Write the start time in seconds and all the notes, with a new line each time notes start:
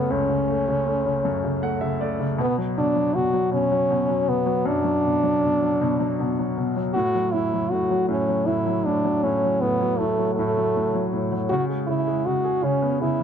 Already playing: F#2 C#3 A3 B3
0.10 C#2 C#4
0.30 C#3
0.48 A3
0.68 C#3
0.86 A3
1.06 C#3
1.25 F#2
1.44 C#3
1.62 A3 F#5
1.81 C#3 E5
2.01 A3 D5
2.20 C#3
2.38 B2 B3
2.58 F#3
2.78 B2 D4
2.96 F#3
3.15 B2 F#4
3.33 F#3
3.51 B2 C#4
3.72 F#3
3.91 B2
4.09 F#3
4.28 B2 B3
4.46 F#3
4.65 F#2 D4
4.84 F#3
5.05 B2
5.24 F#3
5.43 B2
5.62 F#3
5.81 B2
6.00 F#3
6.20 B2
6.39 F#3
6.58 B2
6.76 F#3
6.94 A2 F#4
7.15 F#3
7.32 A2 E4
7.54 F#3
7.71 A2 F#4
7.91 F#3
8.09 A2 C#4
8.29 F#3
8.46 A2 E4
8.67 F#3
8.85 A2 D4
9.05 F#3
9.24 A2 C#4
9.44 F#3
9.61 A2 B3
9.81 F#3
9.98 A2 A3
10.19 F#3
10.35 A2 A3
10.58 F#3
10.77 A2
10.95 F#3
11.14 A2
11.32 F#3
11.49 C#3 F#4
11.70 G#3
11.87 C#3 E4
12.07 G#3
12.26 C#3 F#4
12.45 G#4
12.63 C#3 C#4
12.82 B3
13.01 C#3 E4
13.20 E3